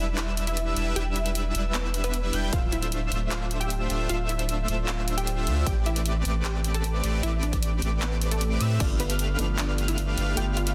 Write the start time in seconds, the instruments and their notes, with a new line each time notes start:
Already playing: sub bass E1, supersaw synth G3 D4 E4 B4 E5
0.00 digital synth lead E6
0.17 synth pluck E4 E5, clap, closed hi-hat
0.37 closed hi-hat
0.47 synth pluck E4 E5, closed hi-hat
0.57 closed hi-hat
0.76 sub bass E1, supersaw synth G3 D4 E4 B4 E5, digital synth lead E6, closed hi-hat
0.96 sub bass E1, supersaw synth G3 D4 E4 B4 E5, synth pluck G4 G5, digital synth lead E6, closed hi-hat
1.16 synth pluck E4 E5, closed hi-hat
1.26 closed hi-hat
1.35 closed hi-hat
1.55 sub bass E1, supersaw synth G3 D4 E4 B4 E5, digital synth lead E6, closed hi-hat
1.74 synth pluck B3 B4, clap, closed hi-hat
1.94 closed hi-hat
2.04 synth pluck B3 B4, closed hi-hat
2.14 closed hi-hat
2.33 sub bass E1, supersaw synth G3 D4 E4 B4 G5, digital synth lead G6, closed hi-hat
2.53 sub bass D1, supersaw synth A3 D4 F4 C5, synth pluck F4 F5, digital synth lead E6, kick, closed hi-hat
2.72 synth pluck E4 E5, closed hi-hat
2.82 closed hi-hat
2.92 closed hi-hat
3.11 sub bass D1, supersaw synth A3 D4 F4 C5 E5, digital synth lead E6, closed hi-hat
3.31 synth pluck F4 F5, clap, closed hi-hat
3.51 closed hi-hat
3.60 synth pluck G4 G5, closed hi-hat
3.70 closed hi-hat
3.90 sub bass D1, supersaw synth A3 D4 F4 C5 E5, digital synth lead E6, closed hi-hat
4.09 sub bass D1, supersaw synth A3 D4 F4 C5 E5, synth pluck F4 F5, digital synth lead E6, closed hi-hat
4.29 synth pluck E4 E5, closed hi-hat
4.39 closed hi-hat
4.49 closed hi-hat
4.68 sub bass D1, supersaw synth A3 D4 F4 C5 E5, digital synth lead E6, closed hi-hat
4.88 synth pluck F4 F5, clap, closed hi-hat
5.08 closed hi-hat
5.17 synth pluck G4 G5, closed hi-hat
5.27 closed hi-hat
5.47 sub bass D2, supersaw synth A3 D4 F4 C5 E5, digital synth lead E6, closed hi-hat
5.66 sub bass A1, supersaw synth A3 C4 G4 B4 D5, synth pluck G4 G5, digital synth lead D6, kick, closed hi-hat
5.86 synth pluck E4 E5, closed hi-hat
5.96 closed hi-hat
6.06 closed hi-hat
6.25 sub bass A1, supersaw synth A3 C4 G4 B4 D5, digital synth lead D6, closed hi-hat
6.45 synth pluck G4 G5, clap, closed hi-hat
6.64 closed hi-hat
6.74 synth pluck A4 A5, closed hi-hat
6.84 closed hi-hat
7.04 sub bass A1, supersaw synth A3 C4 G4 B4 D5, digital synth lead D6, closed hi-hat
7.23 sub bass A1, supersaw synth A3 C4 G4 B4 D5, synth pluck E4 E5, digital synth lead D6, closed hi-hat
7.43 synth pluck D4 D5, closed hi-hat
7.53 kick, closed hi-hat
7.63 closed hi-hat
7.82 sub bass A1, supersaw synth A3 C4 G4 B4 D5, digital synth lead D6, closed hi-hat
8.02 synth pluck B3 B4, clap, closed hi-hat
8.21 closed hi-hat
8.31 synth pluck A3 A4, closed hi-hat
8.41 closed hi-hat
8.61 sub bass A2, supersaw synth A3 C4 G4 B4 E5, digital synth lead E6, closed hi-hat
8.78 sub bass G1, felt piano A3 B3 D4, supersaw synth A3 D4 G4 B4 F5, synth pluck D4 D5, digital synth lead F6, kick, closed hi-hat, crash
8.82 felt piano F4
9.00 synth pluck B3 B4, closed hi-hat
9.10 closed hi-hat
9.19 closed hi-hat
9.37 sub bass G1, felt piano A3 B3 D4, supersaw synth A3 D4 G4 B4 F5, digital synth lead F6, closed hi-hat
9.41 felt piano F3
9.58 synth pluck D4 D5, clap, closed hi-hat
9.78 closed hi-hat
9.88 synth pluck E4 E5, closed hi-hat
9.98 closed hi-hat
10.17 sub bass G1, supersaw synth A3 D4 G4 B4 F5, digital synth lead F6, closed hi-hat
10.35 sub bass G1, felt piano A3 B3 D4, supersaw synth A3 D4 G4 B4 F5, synth pluck G4 G5, digital synth lead F6, closed hi-hat
10.39 felt piano F4
10.57 synth pluck F4 F5, closed hi-hat
10.67 closed hi-hat